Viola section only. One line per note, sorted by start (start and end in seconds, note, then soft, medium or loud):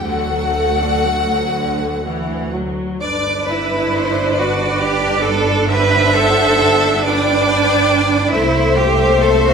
0.03 0.27 D3 medium
0.03 1.42 A4 medium
0.28 0.54 F#3 medium
0.53 0.79 A3 medium
0.79 1.05 D4 medium
1.05 1.30 A3 medium
1.30 1.55 F#3 medium
1.55 2.01 D3 medium
2.05 2.54 E3 medium
2.54 3.01 F#3 medium
3.02 8.31 D4 medium
3.02 5.66 B4 medium
5.70 7.00 C5 medium
7.05 8.31 B4 medium
8.35 9.54 A3 medium
8.35 9.54 A4 medium